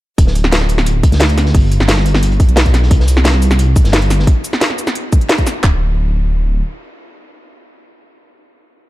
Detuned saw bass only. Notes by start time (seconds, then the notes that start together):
0.18 D1
1.12 D2
1.55 G1
1.80 G1
2.48 B1
2.91 C2
3.85 G1
5.64 D1